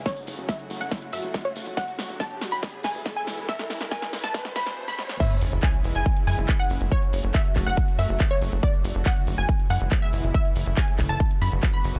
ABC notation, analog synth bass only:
X:1
M:4/4
L:1/16
Q:1/4=140
K:F#m
V:1 name="Analog synth bass" clef=bass
z2 F,,, F,,, z2 F,,, F,,, z2 F,, F,,, z2 F,,, F,,, | z2 F,,, F,,, z2 F,,, F,,, z2 F,, F,,, z2 F,,, F,,, | z2 F,,, F,,, z2 F,,, F,,, z2 F,,, F,,, z4 | z2 F,,, F,,, z2 F,,, F,,, z2 F,, F,,, z2 F,,, F,,, |
z2 F,,, F,,, z2 F,,, F,,, z2 F,, F,,, z2 F,,, F,,, | z2 F,,, F,,, z2 F,,, F,,, z2 F,, F,,, z2 F,,, F,,, | z2 F,,, F,,, z2 F,,, F,,, z2 F,, F,,, z2 F,,, F,,, |]